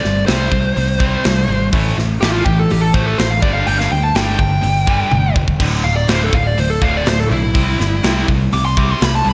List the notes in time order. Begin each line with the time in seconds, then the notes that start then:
Already playing: D5
0.04 G1 C3 G3, snare
0.26 C2 C3 G3 C4 C5, snare, open hi-hat
0.51 C2 C3 G3, kick
0.76 C2 C3 G3, open hi-hat
0.99 C3 G3 C4, kick
1.24 C2 C3 G3, snare, open hi-hat
1.48 G#1 C3 G3
1.73 A1 A2 E3 A3, kick, open hi-hat
1.98 A1 A2 E3, snare
2.21 A1 A2 E3 A3 G4, snare, open hi-hat
2.32 F4
2.44 A1 A2 E3 G4, kick
2.59 A4
2.70 A1 A2 E3 G4, open hi-hat
2.81 A4
2.94 A1 A2 E3 A3 C5, kick
3.06 A4
3.18 A1 A2 E3 C5, snare, open hi-hat
3.31 F5
3.42 G1 G2 D3 G3 D5, kick
3.53 F5
3.67 G1 G2 D3 G3 G5, open hi-hat
3.79 F5, snare
3.91 D2 G2 D3 G5
4.03 A5
4.14 G1 G2 D3 G3 G5, snare, open hi-hat
4.39 G1 G2 D3 G5, kick
4.62 G1 G2 D3, open hi-hat
4.87 G2 D3 G3, kick
5.12 G1 G2 D3, high tom
5.35 E1 G2 D3, kick
5.48 kick
5.60 D1 D2 A2 D3, kick, crash
5.84 D1 D2 A2 F5
5.96 D5
6.08 D1 D2 A2 D3 C5, snare, open hi-hat
6.24 A4
6.33 D1 D2 A2 F5, kick
6.47 D5
6.57 D1 D2 A2 C5, open hi-hat
6.70 A4
6.81 D1 D2 A2 D3 F5, kick
6.97 D5
7.05 D1 D2 A2 C5, snare, open hi-hat
7.20 A4
7.30 B1 D2 A2 E4
7.54 C2 C3 G3 C4, kick, open hi-hat
7.80 G1 C3 G3, snare
8.03 C2 C3 G3 C4, snare, open hi-hat
8.28 C2 C3 G3, kick
8.52 C2 C3 G3 D6, open hi-hat
8.65 C6
8.77 C3 G3 C4 D6, kick
8.92 C6
9.00 C2 C3 G3, snare, open hi-hat
9.05 B5
9.16 A5
9.24 C2 C3 G3
9.30 B5